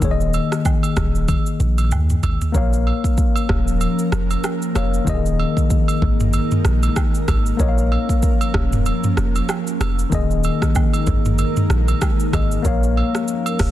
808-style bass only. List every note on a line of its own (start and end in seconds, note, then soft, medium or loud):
0.02 0.39 D#1 loud
0.97 1.34 D#1 medium
1.60 1.93 A#1 loud
1.91 2.15 D#2 loud
2.23 2.37 G#1 medium
2.55 2.92 A#1 loud
3.50 3.87 D#1 medium
4.12 4.36 F1 loud
4.76 4.99 F1 medium
5.07 5.45 D#1 loud
6.02 6.40 G#1 medium
6.65 6.89 A#1 loud
7.28 7.52 G#1 loud
7.60 7.97 A#1 loud
8.55 8.92 D#1 medium
9.18 9.41 F1 loud
9.81 10.04 F1 medium
10.12 10.50 D#1 loud
11.07 11.45 G#1 medium
11.70 11.94 A#1 loud
12.34 12.57 G#1 loud
12.65 13.03 A#1 loud
13.60 13.71 D#1 medium